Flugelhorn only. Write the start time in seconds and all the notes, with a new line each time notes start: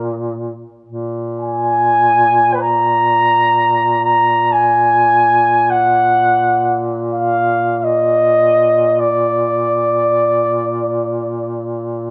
Already playing: A#4
1.40 G#5
2.54 B4
2.60 A#5
4.05 A#5
4.52 G#5
5.70 F#5
7.13 F5
7.78 F5
7.84 D#5
8.99 D5